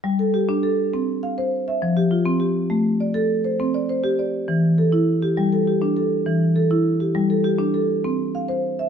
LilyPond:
\new Staff \with { instrumentName = "Marimba" } { \time 12/8 \key e \phrygian \tempo 4. = 135 << { r8 a'8 g'4 a'4. r8 f''4. e''8~ | e''8 g'8 f'4 g'4. r8 d''4. c''8~ | c''8 d''8 c''4 d''4. r8 a'4. g'8~ | g'8 a'8 g'4 a'4. r8 a'4. g'8~ |
g'8 a'8 g'4 a'4. r8 f''4. e''8 | } \\ { g4 r8 d'4 r8 c'4 r8 c''4 r8 | f4 r8 c'4 r8 a4 r8 a'4 r8 | c'4 r8 g'4 r8 e4 r8 e'4 r8 | g4 r8 d'4 r8 e4 r8 e'4 r8 |
g4 r8 d'4 r8 c'4 r8 c''4 r8 | } >> }